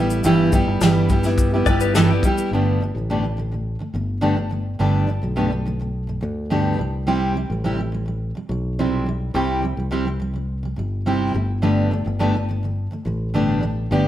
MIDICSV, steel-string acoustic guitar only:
0, 0, Header, 1, 2, 480
1, 0, Start_track
1, 0, Key_signature, 1, "major"
1, 0, Tempo, 569260
1, 209, Time_signature, 4, 2, 24, 8
1, 11871, End_track
2, 0, Start_track
2, 0, Title_t, "Steel-string acoustic guitar"
2, 0, Program_c, 0, 25
2, 0, Note_on_c, 0, 55, 70
2, 0, Note_on_c, 0, 59, 65
2, 0, Note_on_c, 0, 64, 77
2, 0, Note_on_c, 0, 67, 72
2, 204, Note_off_c, 0, 55, 0
2, 206, Note_off_c, 0, 59, 0
2, 208, Note_off_c, 0, 64, 0
2, 208, Note_on_c, 0, 43, 87
2, 209, Note_on_c, 0, 52, 88
2, 212, Note_off_c, 0, 67, 0
2, 214, Note_on_c, 0, 55, 85
2, 217, Note_on_c, 0, 59, 86
2, 219, Note_on_c, 0, 64, 94
2, 222, Note_on_c, 0, 67, 105
2, 436, Note_off_c, 0, 55, 0
2, 442, Note_off_c, 0, 59, 0
2, 446, Note_on_c, 0, 55, 66
2, 447, Note_off_c, 0, 43, 0
2, 448, Note_off_c, 0, 52, 0
2, 450, Note_off_c, 0, 64, 0
2, 452, Note_off_c, 0, 67, 0
2, 452, Note_on_c, 0, 59, 69
2, 460, Note_on_c, 0, 64, 68
2, 462, Note_on_c, 0, 67, 73
2, 686, Note_off_c, 0, 55, 0
2, 689, Note_off_c, 0, 59, 0
2, 689, Note_off_c, 0, 64, 0
2, 690, Note_on_c, 0, 43, 79
2, 692, Note_on_c, 0, 52, 86
2, 694, Note_off_c, 0, 67, 0
2, 699, Note_on_c, 0, 59, 89
2, 700, Note_on_c, 0, 55, 81
2, 700, Note_on_c, 0, 64, 79
2, 704, Note_on_c, 0, 67, 88
2, 921, Note_off_c, 0, 55, 0
2, 927, Note_off_c, 0, 59, 0
2, 928, Note_off_c, 0, 43, 0
2, 929, Note_off_c, 0, 52, 0
2, 931, Note_on_c, 0, 55, 63
2, 932, Note_off_c, 0, 64, 0
2, 935, Note_off_c, 0, 67, 0
2, 937, Note_on_c, 0, 59, 62
2, 944, Note_on_c, 0, 64, 66
2, 948, Note_on_c, 0, 67, 67
2, 1046, Note_off_c, 0, 67, 0
2, 1048, Note_off_c, 0, 55, 0
2, 1051, Note_off_c, 0, 59, 0
2, 1052, Note_off_c, 0, 64, 0
2, 1056, Note_on_c, 0, 67, 56
2, 1062, Note_on_c, 0, 64, 50
2, 1067, Note_on_c, 0, 59, 48
2, 1077, Note_on_c, 0, 55, 46
2, 1286, Note_off_c, 0, 67, 0
2, 1293, Note_off_c, 0, 64, 0
2, 1295, Note_off_c, 0, 59, 0
2, 1296, Note_on_c, 0, 67, 58
2, 1301, Note_off_c, 0, 55, 0
2, 1304, Note_on_c, 0, 64, 53
2, 1311, Note_on_c, 0, 59, 57
2, 1313, Note_on_c, 0, 55, 50
2, 1409, Note_off_c, 0, 55, 0
2, 1410, Note_off_c, 0, 67, 0
2, 1413, Note_off_c, 0, 59, 0
2, 1414, Note_off_c, 0, 64, 0
2, 1419, Note_on_c, 0, 55, 64
2, 1423, Note_on_c, 0, 59, 67
2, 1430, Note_on_c, 0, 64, 73
2, 1437, Note_on_c, 0, 67, 72
2, 1642, Note_off_c, 0, 59, 0
2, 1643, Note_off_c, 0, 55, 0
2, 1647, Note_on_c, 0, 43, 86
2, 1649, Note_on_c, 0, 52, 91
2, 1650, Note_off_c, 0, 64, 0
2, 1652, Note_off_c, 0, 67, 0
2, 1653, Note_on_c, 0, 55, 90
2, 1653, Note_on_c, 0, 59, 83
2, 1660, Note_on_c, 0, 64, 93
2, 1662, Note_on_c, 0, 67, 91
2, 1758, Note_off_c, 0, 67, 0
2, 1765, Note_off_c, 0, 43, 0
2, 1766, Note_off_c, 0, 52, 0
2, 1768, Note_off_c, 0, 55, 0
2, 1768, Note_off_c, 0, 59, 0
2, 1768, Note_off_c, 0, 64, 0
2, 1768, Note_on_c, 0, 67, 56
2, 1778, Note_on_c, 0, 64, 56
2, 1783, Note_on_c, 0, 59, 51
2, 1788, Note_on_c, 0, 55, 43
2, 1886, Note_off_c, 0, 55, 0
2, 1886, Note_off_c, 0, 67, 0
2, 1891, Note_off_c, 0, 64, 0
2, 1893, Note_off_c, 0, 59, 0
2, 1896, Note_on_c, 0, 55, 70
2, 1901, Note_on_c, 0, 59, 65
2, 1906, Note_on_c, 0, 64, 66
2, 1915, Note_on_c, 0, 67, 75
2, 2129, Note_off_c, 0, 55, 0
2, 2132, Note_off_c, 0, 59, 0
2, 2134, Note_off_c, 0, 64, 0
2, 2135, Note_on_c, 0, 43, 62
2, 2135, Note_on_c, 0, 50, 67
2, 2139, Note_off_c, 0, 67, 0
2, 2142, Note_on_c, 0, 57, 59
2, 2145, Note_on_c, 0, 59, 66
2, 2146, Note_on_c, 0, 62, 65
2, 2147, Note_on_c, 0, 67, 69
2, 2359, Note_off_c, 0, 43, 0
2, 2369, Note_off_c, 0, 50, 0
2, 2370, Note_on_c, 0, 43, 52
2, 2372, Note_off_c, 0, 57, 0
2, 2374, Note_off_c, 0, 59, 0
2, 2374, Note_off_c, 0, 62, 0
2, 2375, Note_off_c, 0, 67, 0
2, 2379, Note_on_c, 0, 50, 51
2, 2390, Note_on_c, 0, 57, 58
2, 2483, Note_off_c, 0, 43, 0
2, 2491, Note_off_c, 0, 50, 0
2, 2493, Note_on_c, 0, 43, 37
2, 2496, Note_off_c, 0, 57, 0
2, 2505, Note_on_c, 0, 50, 39
2, 2513, Note_on_c, 0, 57, 45
2, 2602, Note_off_c, 0, 43, 0
2, 2602, Note_off_c, 0, 50, 0
2, 2603, Note_off_c, 0, 57, 0
2, 2612, Note_on_c, 0, 43, 59
2, 2612, Note_on_c, 0, 50, 62
2, 2613, Note_on_c, 0, 57, 67
2, 2619, Note_on_c, 0, 59, 62
2, 2621, Note_on_c, 0, 62, 69
2, 2622, Note_on_c, 0, 67, 70
2, 2712, Note_off_c, 0, 43, 0
2, 2722, Note_off_c, 0, 50, 0
2, 2722, Note_on_c, 0, 43, 38
2, 2728, Note_off_c, 0, 57, 0
2, 2731, Note_off_c, 0, 59, 0
2, 2732, Note_off_c, 0, 62, 0
2, 2732, Note_off_c, 0, 67, 0
2, 2732, Note_on_c, 0, 50, 44
2, 2741, Note_on_c, 0, 57, 50
2, 2830, Note_off_c, 0, 43, 0
2, 2840, Note_off_c, 0, 50, 0
2, 2840, Note_on_c, 0, 43, 47
2, 2850, Note_on_c, 0, 50, 53
2, 2852, Note_off_c, 0, 57, 0
2, 2861, Note_on_c, 0, 57, 52
2, 2954, Note_off_c, 0, 43, 0
2, 2960, Note_off_c, 0, 50, 0
2, 2964, Note_on_c, 0, 43, 41
2, 2970, Note_on_c, 0, 50, 38
2, 2971, Note_off_c, 0, 57, 0
2, 2984, Note_on_c, 0, 57, 41
2, 3155, Note_off_c, 0, 43, 0
2, 3158, Note_off_c, 0, 50, 0
2, 3165, Note_off_c, 0, 57, 0
2, 3196, Note_on_c, 0, 43, 39
2, 3207, Note_on_c, 0, 50, 45
2, 3216, Note_on_c, 0, 57, 45
2, 3309, Note_off_c, 0, 43, 0
2, 3316, Note_off_c, 0, 50, 0
2, 3319, Note_on_c, 0, 43, 47
2, 3325, Note_off_c, 0, 57, 0
2, 3327, Note_on_c, 0, 50, 60
2, 3335, Note_on_c, 0, 57, 55
2, 3512, Note_off_c, 0, 43, 0
2, 3516, Note_off_c, 0, 50, 0
2, 3521, Note_off_c, 0, 57, 0
2, 3551, Note_on_c, 0, 50, 63
2, 3552, Note_on_c, 0, 43, 64
2, 3555, Note_on_c, 0, 57, 65
2, 3560, Note_on_c, 0, 59, 74
2, 3560, Note_on_c, 0, 62, 70
2, 3564, Note_on_c, 0, 67, 73
2, 3666, Note_off_c, 0, 43, 0
2, 3676, Note_off_c, 0, 50, 0
2, 3676, Note_on_c, 0, 43, 36
2, 3678, Note_off_c, 0, 57, 0
2, 3681, Note_off_c, 0, 59, 0
2, 3681, Note_off_c, 0, 62, 0
2, 3683, Note_off_c, 0, 67, 0
2, 3690, Note_on_c, 0, 50, 39
2, 3697, Note_on_c, 0, 57, 42
2, 3780, Note_off_c, 0, 43, 0
2, 3791, Note_off_c, 0, 50, 0
2, 3791, Note_on_c, 0, 43, 52
2, 3801, Note_on_c, 0, 50, 55
2, 3803, Note_off_c, 0, 57, 0
2, 3813, Note_on_c, 0, 57, 55
2, 3988, Note_off_c, 0, 43, 0
2, 3993, Note_off_c, 0, 50, 0
2, 4000, Note_off_c, 0, 57, 0
2, 4039, Note_on_c, 0, 43, 65
2, 4043, Note_on_c, 0, 50, 68
2, 4043, Note_on_c, 0, 57, 68
2, 4050, Note_on_c, 0, 59, 70
2, 4050, Note_on_c, 0, 62, 70
2, 4051, Note_on_c, 0, 67, 76
2, 4266, Note_off_c, 0, 43, 0
2, 4277, Note_on_c, 0, 43, 54
2, 4278, Note_off_c, 0, 50, 0
2, 4282, Note_off_c, 0, 57, 0
2, 4286, Note_off_c, 0, 59, 0
2, 4286, Note_off_c, 0, 62, 0
2, 4287, Note_off_c, 0, 67, 0
2, 4288, Note_on_c, 0, 50, 56
2, 4298, Note_on_c, 0, 57, 55
2, 4389, Note_off_c, 0, 43, 0
2, 4398, Note_off_c, 0, 50, 0
2, 4399, Note_on_c, 0, 43, 42
2, 4406, Note_off_c, 0, 57, 0
2, 4409, Note_on_c, 0, 50, 44
2, 4416, Note_on_c, 0, 57, 44
2, 4507, Note_off_c, 0, 43, 0
2, 4510, Note_off_c, 0, 50, 0
2, 4514, Note_off_c, 0, 57, 0
2, 4518, Note_on_c, 0, 43, 68
2, 4520, Note_on_c, 0, 50, 62
2, 4524, Note_on_c, 0, 57, 68
2, 4526, Note_on_c, 0, 59, 71
2, 4529, Note_on_c, 0, 62, 64
2, 4531, Note_on_c, 0, 67, 72
2, 4631, Note_off_c, 0, 43, 0
2, 4641, Note_off_c, 0, 50, 0
2, 4641, Note_on_c, 0, 43, 44
2, 4643, Note_off_c, 0, 57, 0
2, 4644, Note_off_c, 0, 59, 0
2, 4646, Note_off_c, 0, 62, 0
2, 4647, Note_off_c, 0, 67, 0
2, 4653, Note_on_c, 0, 50, 45
2, 4659, Note_on_c, 0, 57, 46
2, 4759, Note_off_c, 0, 43, 0
2, 4767, Note_off_c, 0, 50, 0
2, 4769, Note_on_c, 0, 43, 46
2, 4771, Note_off_c, 0, 57, 0
2, 4776, Note_on_c, 0, 50, 56
2, 4785, Note_on_c, 0, 57, 56
2, 4876, Note_off_c, 0, 43, 0
2, 4886, Note_off_c, 0, 50, 0
2, 4886, Note_on_c, 0, 43, 44
2, 4894, Note_off_c, 0, 57, 0
2, 4896, Note_on_c, 0, 50, 40
2, 4904, Note_on_c, 0, 57, 44
2, 5076, Note_off_c, 0, 43, 0
2, 5081, Note_off_c, 0, 50, 0
2, 5085, Note_off_c, 0, 57, 0
2, 5119, Note_on_c, 0, 43, 41
2, 5132, Note_on_c, 0, 50, 44
2, 5137, Note_on_c, 0, 57, 48
2, 5225, Note_off_c, 0, 43, 0
2, 5235, Note_on_c, 0, 43, 54
2, 5239, Note_off_c, 0, 50, 0
2, 5245, Note_off_c, 0, 57, 0
2, 5249, Note_on_c, 0, 50, 61
2, 5255, Note_on_c, 0, 57, 54
2, 5431, Note_off_c, 0, 43, 0
2, 5438, Note_off_c, 0, 50, 0
2, 5441, Note_off_c, 0, 57, 0
2, 5482, Note_on_c, 0, 43, 70
2, 5485, Note_on_c, 0, 50, 67
2, 5489, Note_on_c, 0, 59, 74
2, 5492, Note_on_c, 0, 57, 70
2, 5493, Note_on_c, 0, 62, 70
2, 5496, Note_on_c, 0, 67, 69
2, 5719, Note_off_c, 0, 50, 0
2, 5723, Note_off_c, 0, 43, 0
2, 5723, Note_on_c, 0, 48, 53
2, 5726, Note_off_c, 0, 59, 0
2, 5727, Note_off_c, 0, 57, 0
2, 5728, Note_off_c, 0, 62, 0
2, 5730, Note_off_c, 0, 67, 0
2, 5743, Note_on_c, 0, 55, 59
2, 5915, Note_off_c, 0, 48, 0
2, 5925, Note_off_c, 0, 55, 0
2, 5958, Note_on_c, 0, 48, 74
2, 5960, Note_on_c, 0, 55, 68
2, 5966, Note_on_c, 0, 60, 77
2, 5969, Note_on_c, 0, 64, 73
2, 5970, Note_on_c, 0, 67, 82
2, 6183, Note_off_c, 0, 48, 0
2, 6193, Note_on_c, 0, 48, 50
2, 6202, Note_off_c, 0, 55, 0
2, 6205, Note_off_c, 0, 60, 0
2, 6206, Note_off_c, 0, 64, 0
2, 6207, Note_off_c, 0, 67, 0
2, 6213, Note_on_c, 0, 55, 59
2, 6315, Note_off_c, 0, 48, 0
2, 6325, Note_on_c, 0, 48, 44
2, 6328, Note_off_c, 0, 55, 0
2, 6342, Note_on_c, 0, 55, 44
2, 6432, Note_off_c, 0, 48, 0
2, 6434, Note_off_c, 0, 55, 0
2, 6442, Note_on_c, 0, 48, 59
2, 6444, Note_on_c, 0, 55, 63
2, 6445, Note_on_c, 0, 60, 61
2, 6453, Note_on_c, 0, 64, 68
2, 6455, Note_on_c, 0, 67, 78
2, 6549, Note_off_c, 0, 48, 0
2, 6559, Note_on_c, 0, 48, 46
2, 6564, Note_off_c, 0, 55, 0
2, 6564, Note_off_c, 0, 60, 0
2, 6568, Note_off_c, 0, 64, 0
2, 6569, Note_off_c, 0, 67, 0
2, 6580, Note_on_c, 0, 55, 52
2, 6668, Note_off_c, 0, 48, 0
2, 6678, Note_on_c, 0, 48, 49
2, 6688, Note_off_c, 0, 55, 0
2, 6698, Note_on_c, 0, 55, 53
2, 6784, Note_off_c, 0, 48, 0
2, 6794, Note_on_c, 0, 48, 39
2, 6802, Note_off_c, 0, 55, 0
2, 6812, Note_on_c, 0, 55, 48
2, 6991, Note_off_c, 0, 48, 0
2, 7000, Note_off_c, 0, 55, 0
2, 7041, Note_on_c, 0, 48, 43
2, 7057, Note_on_c, 0, 55, 51
2, 7149, Note_off_c, 0, 48, 0
2, 7159, Note_on_c, 0, 48, 58
2, 7170, Note_off_c, 0, 55, 0
2, 7179, Note_on_c, 0, 55, 64
2, 7354, Note_off_c, 0, 48, 0
2, 7364, Note_off_c, 0, 55, 0
2, 7411, Note_on_c, 0, 48, 69
2, 7413, Note_on_c, 0, 55, 71
2, 7413, Note_on_c, 0, 60, 70
2, 7417, Note_on_c, 0, 64, 66
2, 7423, Note_on_c, 0, 67, 68
2, 7632, Note_off_c, 0, 48, 0
2, 7642, Note_on_c, 0, 48, 55
2, 7649, Note_off_c, 0, 55, 0
2, 7649, Note_off_c, 0, 60, 0
2, 7651, Note_off_c, 0, 64, 0
2, 7654, Note_off_c, 0, 67, 0
2, 7661, Note_on_c, 0, 55, 61
2, 7835, Note_off_c, 0, 48, 0
2, 7845, Note_off_c, 0, 55, 0
2, 7875, Note_on_c, 0, 48, 67
2, 7879, Note_on_c, 0, 55, 73
2, 7886, Note_on_c, 0, 60, 71
2, 7886, Note_on_c, 0, 64, 75
2, 7893, Note_on_c, 0, 67, 80
2, 8106, Note_off_c, 0, 48, 0
2, 8116, Note_on_c, 0, 48, 49
2, 8122, Note_off_c, 0, 55, 0
2, 8126, Note_off_c, 0, 60, 0
2, 8126, Note_off_c, 0, 64, 0
2, 8129, Note_off_c, 0, 67, 0
2, 8135, Note_on_c, 0, 55, 56
2, 8230, Note_off_c, 0, 48, 0
2, 8240, Note_on_c, 0, 48, 41
2, 8250, Note_off_c, 0, 55, 0
2, 8259, Note_on_c, 0, 55, 45
2, 8343, Note_off_c, 0, 48, 0
2, 8350, Note_off_c, 0, 55, 0
2, 8354, Note_on_c, 0, 48, 65
2, 8360, Note_on_c, 0, 55, 66
2, 8365, Note_on_c, 0, 60, 69
2, 8367, Note_on_c, 0, 64, 75
2, 8369, Note_on_c, 0, 67, 74
2, 8470, Note_off_c, 0, 48, 0
2, 8480, Note_on_c, 0, 48, 44
2, 8483, Note_off_c, 0, 55, 0
2, 8485, Note_off_c, 0, 60, 0
2, 8486, Note_off_c, 0, 64, 0
2, 8487, Note_off_c, 0, 67, 0
2, 8496, Note_on_c, 0, 55, 51
2, 8587, Note_off_c, 0, 48, 0
2, 8597, Note_on_c, 0, 48, 53
2, 8604, Note_off_c, 0, 55, 0
2, 8615, Note_on_c, 0, 55, 56
2, 8705, Note_off_c, 0, 48, 0
2, 8716, Note_on_c, 0, 48, 38
2, 8722, Note_off_c, 0, 55, 0
2, 8732, Note_on_c, 0, 55, 46
2, 8913, Note_off_c, 0, 48, 0
2, 8921, Note_off_c, 0, 55, 0
2, 8962, Note_on_c, 0, 48, 45
2, 8982, Note_on_c, 0, 55, 48
2, 9065, Note_off_c, 0, 48, 0
2, 9076, Note_on_c, 0, 48, 52
2, 9087, Note_off_c, 0, 55, 0
2, 9097, Note_on_c, 0, 55, 56
2, 9273, Note_off_c, 0, 48, 0
2, 9284, Note_off_c, 0, 55, 0
2, 9324, Note_on_c, 0, 48, 60
2, 9327, Note_on_c, 0, 55, 62
2, 9333, Note_on_c, 0, 60, 74
2, 9335, Note_on_c, 0, 64, 73
2, 9340, Note_on_c, 0, 67, 75
2, 9558, Note_on_c, 0, 43, 49
2, 9563, Note_off_c, 0, 48, 0
2, 9566, Note_on_c, 0, 50, 57
2, 9567, Note_off_c, 0, 55, 0
2, 9570, Note_off_c, 0, 60, 0
2, 9571, Note_off_c, 0, 64, 0
2, 9573, Note_off_c, 0, 67, 0
2, 9575, Note_on_c, 0, 57, 56
2, 9754, Note_off_c, 0, 43, 0
2, 9759, Note_off_c, 0, 50, 0
2, 9763, Note_off_c, 0, 57, 0
2, 9797, Note_on_c, 0, 43, 64
2, 9799, Note_on_c, 0, 50, 62
2, 9802, Note_on_c, 0, 57, 76
2, 9807, Note_on_c, 0, 62, 75
2, 9808, Note_on_c, 0, 59, 71
2, 9811, Note_on_c, 0, 67, 73
2, 10032, Note_off_c, 0, 43, 0
2, 10038, Note_off_c, 0, 50, 0
2, 10042, Note_on_c, 0, 43, 49
2, 10044, Note_off_c, 0, 57, 0
2, 10047, Note_off_c, 0, 59, 0
2, 10047, Note_off_c, 0, 62, 0
2, 10049, Note_off_c, 0, 67, 0
2, 10049, Note_on_c, 0, 50, 56
2, 10062, Note_on_c, 0, 57, 60
2, 10147, Note_off_c, 0, 43, 0
2, 10157, Note_off_c, 0, 50, 0
2, 10157, Note_on_c, 0, 43, 40
2, 10167, Note_on_c, 0, 50, 40
2, 10170, Note_off_c, 0, 57, 0
2, 10180, Note_on_c, 0, 57, 44
2, 10270, Note_off_c, 0, 43, 0
2, 10272, Note_off_c, 0, 50, 0
2, 10276, Note_off_c, 0, 57, 0
2, 10280, Note_on_c, 0, 43, 59
2, 10282, Note_on_c, 0, 50, 64
2, 10286, Note_on_c, 0, 57, 69
2, 10290, Note_on_c, 0, 59, 74
2, 10290, Note_on_c, 0, 62, 73
2, 10294, Note_on_c, 0, 67, 71
2, 10396, Note_off_c, 0, 43, 0
2, 10405, Note_off_c, 0, 50, 0
2, 10406, Note_on_c, 0, 43, 46
2, 10407, Note_off_c, 0, 57, 0
2, 10409, Note_off_c, 0, 59, 0
2, 10409, Note_off_c, 0, 62, 0
2, 10411, Note_off_c, 0, 67, 0
2, 10415, Note_on_c, 0, 50, 44
2, 10425, Note_on_c, 0, 57, 51
2, 10519, Note_off_c, 0, 43, 0
2, 10526, Note_off_c, 0, 50, 0
2, 10529, Note_on_c, 0, 43, 45
2, 10536, Note_off_c, 0, 57, 0
2, 10536, Note_on_c, 0, 50, 49
2, 10545, Note_on_c, 0, 57, 54
2, 10639, Note_off_c, 0, 43, 0
2, 10649, Note_off_c, 0, 50, 0
2, 10649, Note_on_c, 0, 43, 42
2, 10656, Note_off_c, 0, 57, 0
2, 10659, Note_on_c, 0, 50, 39
2, 10666, Note_on_c, 0, 57, 48
2, 10840, Note_off_c, 0, 43, 0
2, 10846, Note_off_c, 0, 50, 0
2, 10849, Note_off_c, 0, 57, 0
2, 10884, Note_on_c, 0, 43, 42
2, 10894, Note_on_c, 0, 50, 43
2, 10903, Note_on_c, 0, 57, 48
2, 10993, Note_off_c, 0, 43, 0
2, 11003, Note_on_c, 0, 43, 59
2, 11006, Note_off_c, 0, 50, 0
2, 11014, Note_off_c, 0, 57, 0
2, 11016, Note_on_c, 0, 50, 56
2, 11024, Note_on_c, 0, 57, 57
2, 11198, Note_off_c, 0, 43, 0
2, 11204, Note_off_c, 0, 50, 0
2, 11208, Note_off_c, 0, 57, 0
2, 11246, Note_on_c, 0, 43, 69
2, 11249, Note_on_c, 0, 50, 71
2, 11252, Note_on_c, 0, 57, 71
2, 11258, Note_on_c, 0, 59, 67
2, 11258, Note_on_c, 0, 62, 74
2, 11262, Note_on_c, 0, 67, 80
2, 11468, Note_off_c, 0, 43, 0
2, 11478, Note_on_c, 0, 43, 54
2, 11480, Note_off_c, 0, 50, 0
2, 11484, Note_off_c, 0, 57, 0
2, 11490, Note_on_c, 0, 50, 56
2, 11493, Note_off_c, 0, 59, 0
2, 11493, Note_off_c, 0, 62, 0
2, 11494, Note_on_c, 0, 57, 65
2, 11495, Note_off_c, 0, 67, 0
2, 11676, Note_off_c, 0, 43, 0
2, 11681, Note_off_c, 0, 50, 0
2, 11684, Note_off_c, 0, 57, 0
2, 11729, Note_on_c, 0, 50, 72
2, 11730, Note_on_c, 0, 43, 63
2, 11735, Note_on_c, 0, 57, 74
2, 11738, Note_on_c, 0, 59, 66
2, 11739, Note_on_c, 0, 67, 82
2, 11740, Note_on_c, 0, 62, 80
2, 11871, Note_off_c, 0, 43, 0
2, 11871, Note_off_c, 0, 50, 0
2, 11871, Note_off_c, 0, 57, 0
2, 11871, Note_off_c, 0, 59, 0
2, 11871, Note_off_c, 0, 62, 0
2, 11871, Note_off_c, 0, 67, 0
2, 11871, End_track
0, 0, End_of_file